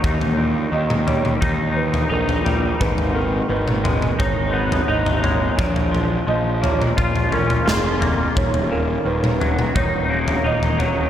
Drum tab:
SD |----------------|----------------|------------o---|----------------|
T2 |-----o-o--------|-----o-o--------|-------o--------|-----o-o--------|
FT |oo----o-o--o-oo-|oo----o-o--o-oo-|ooo---o-oooo--o-|oo----o-o--o-oo-|
BD |o-------o-------|o-------o-------|o-------o-------|o-------o-------|